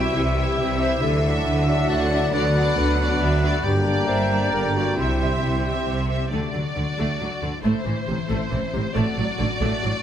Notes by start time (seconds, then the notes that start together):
Already playing: C2 C3 E3 G3 C4 E4 F#4 G4 E5 G5
0.16 C2 C3 E4
0.37 C4 E4 G4 E5
0.59 C2 C3 C4 G4 E5
0.81 E4 G4 C5 E5
1.02 D2 D3 F#3 A3 A4 F#5
1.24 D4 F#4 E5
1.46 D2 D3 E4
1.67 D4 F#4 D5 E5
1.90 D2 D3 F#4 D5 F#5
2.11 D4 F#4 D5 E5
2.32 D2 D3 B3 D4 F#4 D5 F#5 B5
2.55 F#3 B3 F#4 D5
2.77 D2 D3 B4
2.99 B3 F#4 D5
3.21 D2 D3 D5 E5
3.42 B3 F#4 D5
3.64 G1 G2 D3 G3 A#3 D4 G4 D5 G5 A#5
3.87 D3 A#3 G4 D5
4.08 G1 G2 D4 C5 E5
4.32 A#3 G4 D5
4.52 G1 G2 D3 G3 A#3 D4 G4 A#4 D5
4.75 A#3 F#4 G4 A#4 D5
4.97 C2 C3 G3 C4 E4 G4 E5 C6
5.20 G3 C4 G4 E5
5.43 C2 C3 C5
5.65 C4 G4 E5
5.87 C2 C3 C5
6.10 C4 G4 E5
6.31 D2 D3 A3 F#4 D5
6.54 D2 D3 F#3
6.76 D2 D3 D4
6.98 D2 D3 A3 A4
7.20 D2 D3 F#3 F#4
7.42 D2 D3 A4
7.64 A1 A2 A3 E4 C5
7.86 A1 A2 E3
8.08 A1 A2 C3 A3
8.29 A1 A2 A3 C4
8.51 A1 A2 E3 A4
8.74 A1 A2 C3 C4
8.95 A1 A2 A3 F#4 D5
9.18 A1 A2 F#3
9.39 A1 A2 D3 A3
9.61 A1 A2 A3 D4
9.83 A1 A2 F#3 F#4